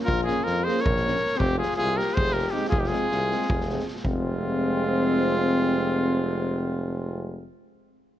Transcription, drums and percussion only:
0, 0, Header, 1, 2, 480
1, 0, Start_track
1, 0, Key_signature, -4, "minor"
1, 0, Tempo, 378072
1, 102, Time_signature, 7, 3, 24, 8
1, 10402, End_track
2, 0, Start_track
2, 0, Title_t, "Drums"
2, 104, Note_on_c, 9, 36, 95
2, 231, Note_off_c, 9, 36, 0
2, 348, Note_on_c, 9, 38, 32
2, 475, Note_off_c, 9, 38, 0
2, 587, Note_on_c, 9, 38, 35
2, 714, Note_off_c, 9, 38, 0
2, 867, Note_on_c, 9, 38, 33
2, 981, Note_off_c, 9, 38, 0
2, 981, Note_on_c, 9, 38, 28
2, 1088, Note_on_c, 9, 36, 111
2, 1108, Note_off_c, 9, 38, 0
2, 1215, Note_off_c, 9, 36, 0
2, 1218, Note_on_c, 9, 38, 29
2, 1345, Note_off_c, 9, 38, 0
2, 1353, Note_on_c, 9, 38, 36
2, 1466, Note_off_c, 9, 38, 0
2, 1466, Note_on_c, 9, 38, 31
2, 1593, Note_off_c, 9, 38, 0
2, 1596, Note_on_c, 9, 38, 35
2, 1699, Note_off_c, 9, 38, 0
2, 1699, Note_on_c, 9, 38, 33
2, 1779, Note_on_c, 9, 36, 94
2, 1826, Note_off_c, 9, 38, 0
2, 1906, Note_off_c, 9, 36, 0
2, 2057, Note_on_c, 9, 38, 36
2, 2168, Note_off_c, 9, 38, 0
2, 2168, Note_on_c, 9, 38, 31
2, 2269, Note_off_c, 9, 38, 0
2, 2269, Note_on_c, 9, 38, 40
2, 2396, Note_off_c, 9, 38, 0
2, 2529, Note_on_c, 9, 38, 35
2, 2639, Note_off_c, 9, 38, 0
2, 2639, Note_on_c, 9, 38, 33
2, 2758, Note_on_c, 9, 36, 114
2, 2766, Note_off_c, 9, 38, 0
2, 2885, Note_off_c, 9, 36, 0
2, 2905, Note_on_c, 9, 38, 30
2, 3026, Note_off_c, 9, 38, 0
2, 3026, Note_on_c, 9, 38, 37
2, 3138, Note_off_c, 9, 38, 0
2, 3138, Note_on_c, 9, 38, 32
2, 3234, Note_off_c, 9, 38, 0
2, 3234, Note_on_c, 9, 38, 41
2, 3361, Note_off_c, 9, 38, 0
2, 3364, Note_on_c, 9, 38, 39
2, 3457, Note_on_c, 9, 36, 118
2, 3491, Note_off_c, 9, 38, 0
2, 3584, Note_off_c, 9, 36, 0
2, 3600, Note_on_c, 9, 38, 35
2, 3706, Note_off_c, 9, 38, 0
2, 3706, Note_on_c, 9, 38, 38
2, 3833, Note_off_c, 9, 38, 0
2, 3949, Note_on_c, 9, 38, 40
2, 4076, Note_off_c, 9, 38, 0
2, 4203, Note_on_c, 9, 38, 34
2, 4330, Note_off_c, 9, 38, 0
2, 4334, Note_on_c, 9, 38, 33
2, 4441, Note_on_c, 9, 36, 116
2, 4461, Note_off_c, 9, 38, 0
2, 4568, Note_off_c, 9, 36, 0
2, 4574, Note_on_c, 9, 38, 32
2, 4685, Note_off_c, 9, 38, 0
2, 4685, Note_on_c, 9, 38, 38
2, 4811, Note_off_c, 9, 38, 0
2, 4811, Note_on_c, 9, 38, 33
2, 4921, Note_off_c, 9, 38, 0
2, 4921, Note_on_c, 9, 38, 36
2, 5020, Note_off_c, 9, 38, 0
2, 5020, Note_on_c, 9, 38, 29
2, 5137, Note_on_c, 9, 36, 97
2, 5147, Note_off_c, 9, 38, 0
2, 5264, Note_off_c, 9, 36, 0
2, 10402, End_track
0, 0, End_of_file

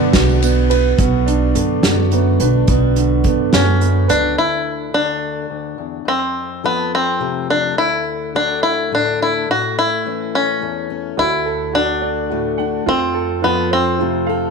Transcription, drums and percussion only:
0, 0, Header, 1, 2, 480
1, 0, Start_track
1, 0, Key_signature, 2, "major"
1, 0, Tempo, 565504
1, 839, Time_signature, 6, 3, 24, 8
1, 12310, End_track
2, 0, Start_track
2, 0, Title_t, "Drums"
2, 114, Note_on_c, 9, 38, 120
2, 114, Note_on_c, 9, 51, 76
2, 116, Note_on_c, 9, 36, 73
2, 122, Note_on_c, 9, 54, 31
2, 199, Note_off_c, 9, 38, 0
2, 199, Note_off_c, 9, 51, 0
2, 201, Note_off_c, 9, 36, 0
2, 207, Note_off_c, 9, 54, 0
2, 246, Note_on_c, 9, 54, 29
2, 331, Note_off_c, 9, 54, 0
2, 360, Note_on_c, 9, 51, 56
2, 369, Note_on_c, 9, 54, 88
2, 445, Note_off_c, 9, 51, 0
2, 454, Note_off_c, 9, 54, 0
2, 600, Note_on_c, 9, 51, 62
2, 611, Note_on_c, 9, 54, 34
2, 685, Note_off_c, 9, 51, 0
2, 696, Note_off_c, 9, 54, 0
2, 835, Note_on_c, 9, 42, 78
2, 837, Note_on_c, 9, 36, 99
2, 920, Note_off_c, 9, 42, 0
2, 922, Note_off_c, 9, 36, 0
2, 1082, Note_on_c, 9, 42, 56
2, 1167, Note_off_c, 9, 42, 0
2, 1318, Note_on_c, 9, 42, 61
2, 1403, Note_off_c, 9, 42, 0
2, 1556, Note_on_c, 9, 38, 97
2, 1556, Note_on_c, 9, 42, 83
2, 1641, Note_off_c, 9, 38, 0
2, 1641, Note_off_c, 9, 42, 0
2, 1794, Note_on_c, 9, 42, 50
2, 1879, Note_off_c, 9, 42, 0
2, 2036, Note_on_c, 9, 42, 65
2, 2121, Note_off_c, 9, 42, 0
2, 2271, Note_on_c, 9, 42, 84
2, 2275, Note_on_c, 9, 36, 100
2, 2356, Note_off_c, 9, 42, 0
2, 2360, Note_off_c, 9, 36, 0
2, 2513, Note_on_c, 9, 42, 52
2, 2598, Note_off_c, 9, 42, 0
2, 2749, Note_on_c, 9, 42, 60
2, 2755, Note_on_c, 9, 36, 65
2, 2834, Note_off_c, 9, 42, 0
2, 2840, Note_off_c, 9, 36, 0
2, 2994, Note_on_c, 9, 38, 103
2, 2994, Note_on_c, 9, 42, 72
2, 3079, Note_off_c, 9, 38, 0
2, 3079, Note_off_c, 9, 42, 0
2, 3235, Note_on_c, 9, 42, 56
2, 3320, Note_off_c, 9, 42, 0
2, 3474, Note_on_c, 9, 42, 56
2, 3559, Note_off_c, 9, 42, 0
2, 12310, End_track
0, 0, End_of_file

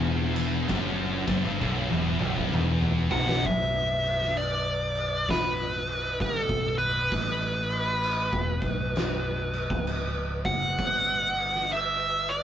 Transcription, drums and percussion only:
0, 0, Header, 1, 2, 480
1, 0, Start_track
1, 0, Key_signature, 2, "minor"
1, 0, Tempo, 917431
1, 1801, Time_signature, 4, 2, 24, 8
1, 6503, End_track
2, 0, Start_track
2, 0, Title_t, "Drums"
2, 188, Note_on_c, 9, 51, 86
2, 240, Note_off_c, 9, 51, 0
2, 363, Note_on_c, 9, 36, 110
2, 363, Note_on_c, 9, 51, 113
2, 415, Note_off_c, 9, 36, 0
2, 415, Note_off_c, 9, 51, 0
2, 668, Note_on_c, 9, 36, 108
2, 668, Note_on_c, 9, 51, 82
2, 720, Note_off_c, 9, 36, 0
2, 721, Note_off_c, 9, 51, 0
2, 845, Note_on_c, 9, 36, 70
2, 897, Note_off_c, 9, 36, 0
2, 999, Note_on_c, 9, 48, 68
2, 1051, Note_off_c, 9, 48, 0
2, 1149, Note_on_c, 9, 47, 82
2, 1201, Note_off_c, 9, 47, 0
2, 1237, Note_on_c, 9, 36, 71
2, 1289, Note_off_c, 9, 36, 0
2, 1326, Note_on_c, 9, 45, 90
2, 1379, Note_off_c, 9, 45, 0
2, 1477, Note_on_c, 9, 45, 81
2, 1529, Note_off_c, 9, 45, 0
2, 1626, Note_on_c, 9, 43, 98
2, 1678, Note_off_c, 9, 43, 0
2, 1722, Note_on_c, 9, 38, 100
2, 1774, Note_off_c, 9, 38, 0
2, 1804, Note_on_c, 9, 49, 66
2, 1805, Note_on_c, 9, 36, 105
2, 1857, Note_off_c, 9, 49, 0
2, 1858, Note_off_c, 9, 36, 0
2, 2110, Note_on_c, 9, 49, 56
2, 2162, Note_off_c, 9, 49, 0
2, 2205, Note_on_c, 9, 38, 33
2, 2258, Note_off_c, 9, 38, 0
2, 2286, Note_on_c, 9, 49, 75
2, 2339, Note_off_c, 9, 49, 0
2, 2590, Note_on_c, 9, 49, 57
2, 2642, Note_off_c, 9, 49, 0
2, 2767, Note_on_c, 9, 36, 99
2, 2769, Note_on_c, 9, 49, 70
2, 2777, Note_on_c, 9, 38, 106
2, 2819, Note_off_c, 9, 36, 0
2, 2822, Note_off_c, 9, 49, 0
2, 2830, Note_off_c, 9, 38, 0
2, 3072, Note_on_c, 9, 49, 55
2, 3124, Note_off_c, 9, 49, 0
2, 3245, Note_on_c, 9, 36, 108
2, 3248, Note_on_c, 9, 49, 79
2, 3298, Note_off_c, 9, 36, 0
2, 3300, Note_off_c, 9, 49, 0
2, 3397, Note_on_c, 9, 36, 105
2, 3450, Note_off_c, 9, 36, 0
2, 3550, Note_on_c, 9, 49, 56
2, 3603, Note_off_c, 9, 49, 0
2, 3723, Note_on_c, 9, 49, 81
2, 3725, Note_on_c, 9, 36, 95
2, 3775, Note_off_c, 9, 49, 0
2, 3777, Note_off_c, 9, 36, 0
2, 4030, Note_on_c, 9, 49, 61
2, 4082, Note_off_c, 9, 49, 0
2, 4205, Note_on_c, 9, 49, 83
2, 4257, Note_off_c, 9, 49, 0
2, 4357, Note_on_c, 9, 36, 105
2, 4409, Note_off_c, 9, 36, 0
2, 4509, Note_on_c, 9, 36, 95
2, 4512, Note_on_c, 9, 49, 57
2, 4562, Note_off_c, 9, 36, 0
2, 4565, Note_off_c, 9, 49, 0
2, 4686, Note_on_c, 9, 49, 78
2, 4694, Note_on_c, 9, 38, 102
2, 4738, Note_off_c, 9, 49, 0
2, 4746, Note_off_c, 9, 38, 0
2, 4988, Note_on_c, 9, 49, 57
2, 5041, Note_off_c, 9, 49, 0
2, 5076, Note_on_c, 9, 36, 98
2, 5128, Note_off_c, 9, 36, 0
2, 5164, Note_on_c, 9, 49, 77
2, 5216, Note_off_c, 9, 49, 0
2, 5467, Note_on_c, 9, 36, 95
2, 5469, Note_on_c, 9, 49, 55
2, 5520, Note_off_c, 9, 36, 0
2, 5522, Note_off_c, 9, 49, 0
2, 5644, Note_on_c, 9, 36, 102
2, 5645, Note_on_c, 9, 49, 71
2, 5696, Note_off_c, 9, 36, 0
2, 5697, Note_off_c, 9, 49, 0
2, 5946, Note_on_c, 9, 49, 58
2, 5998, Note_off_c, 9, 49, 0
2, 6045, Note_on_c, 9, 38, 32
2, 6098, Note_off_c, 9, 38, 0
2, 6122, Note_on_c, 9, 49, 69
2, 6175, Note_off_c, 9, 49, 0
2, 6425, Note_on_c, 9, 49, 53
2, 6477, Note_off_c, 9, 49, 0
2, 6503, End_track
0, 0, End_of_file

